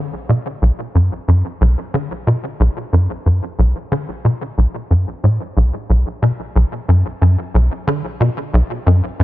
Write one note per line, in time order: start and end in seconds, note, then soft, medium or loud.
0.00 0.11 D3 medium
0.29 0.38 B2 medium
0.62 0.71 B1 loud
0.95 1.10 F#2 medium
1.28 1.43 F#2 medium
1.61 1.76 B1 loud
1.94 2.09 D3 medium
2.27 2.36 B2 medium
2.60 2.69 B1 loud
2.93 3.08 F#2 medium
3.26 3.41 F#2 medium
3.59 3.74 B1 loud
3.92 4.07 D3 medium
4.25 4.34 B2 medium
4.58 4.67 B1 medium
4.91 5.06 F#2 medium
5.24 5.39 A2 medium
5.57 5.72 B1 loud
5.90 6.05 B1 medium
6.22 6.32 B2 medium
6.56 6.65 B1 loud
6.89 7.04 F#2 medium
7.22 7.37 F#2 medium
7.54 7.69 B1 loud
7.87 8.02 D3 medium
8.20 8.29 B2 medium
8.54 8.62 B1 loud
8.87 9.01 F#2 medium
9.20 9.24 F#2 medium